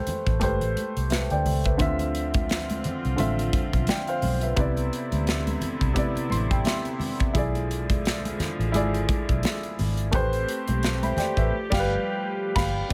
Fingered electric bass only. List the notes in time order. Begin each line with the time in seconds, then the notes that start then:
0.07 muted fingered electric bass stroke
0.27 A1
0.42 G1
0.61 A1
0.97 C2
1.31 D2
1.45 C#2
1.80 D2
2.85 muted fingered electric bass stroke
3.05 C2
3.19 A1
3.74 B1
4.22 B1
4.57 C2
5.12 D2
5.62 muted fingered electric bass stroke
5.81 C2
6.16 muted fingered electric bass stroke
6.32 A1
7.35 B1
8.40 muted fingered electric bass stroke
8.59 A1
8.74 G#1
9.29 B1
9.79 G#1
10.13 A1
10.68 B1
11.17 muted fingered electric bass stroke
11.37 A1
11.72 G1
12.56 G1